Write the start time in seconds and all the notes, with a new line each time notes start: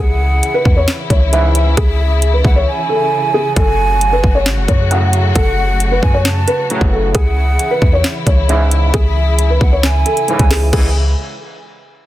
0.00 C#2 C#3 E3 E4 G#4 F#5
0.43 closed hi-hat
0.54 B4
0.65 E2, kick
0.77 C#5
0.88 snare, clap, closed hi-hat
1.10 C#2 C#5, kick, closed hi-hat
1.33 G#2 C#3 E3 E5, closed hi-hat
1.55 closed hi-hat
1.77 C#2 G#4 E5, kick, closed hi-hat
2.22 closed hi-hat
2.33 B4
2.44 C#2 F#5, kick
2.56 C#5
2.67 G#5
2.89 A4
3.34 G#4
3.56 F#1 F#3 A3 F#4 A4 G#5, kick, closed hi-hat
4.01 closed hi-hat
4.13 B4
4.24 F#1, kick
4.35 C#5
4.46 G#1, snare, clap, closed hi-hat
4.57 F#1
4.68 F#2 C#5, kick, closed hi-hat
4.91 A2 C#3 F#3 F#5, closed hi-hat
5.13 closed hi-hat
5.35 F#1 A4 F#5, kick, closed hi-hat
5.80 closed hi-hat
5.91 B4
6.02 F#2 G#5, kick
6.14 C#5
6.25 A5, snare, clap, closed hi-hat
6.47 B4, closed hi-hat
6.70 A2 C#3 F#3, closed hi-hat
6.81 F#1, kick
6.92 A4
7.15 C#2 E3 E4 G#4 F#5, kick, closed hi-hat
7.59 closed hi-hat
7.71 B4
7.82 E2, kick
7.93 C#5
8.04 snare, clap, closed hi-hat
8.27 C#2 C#5, kick, closed hi-hat
8.49 G#2 C#3 E3 E5, closed hi-hat
8.71 closed hi-hat
8.94 C#2 G#4 E5, kick, closed hi-hat
9.39 closed hi-hat
9.50 B4
9.61 C#2 F#5, kick
9.72 C#5
9.83 G#5, snare, clap, closed hi-hat
10.06 A4, closed hi-hat
10.17 closed hi-hat
10.28 G#2 C#3 E3, closed hi-hat
10.39 C#2, kick, closed hi-hat
10.50 G#4, snare, clap, open hi-hat
10.73 C#2 G#2 C#3 E3 G#3 E4 G#4 G#5, kick, crash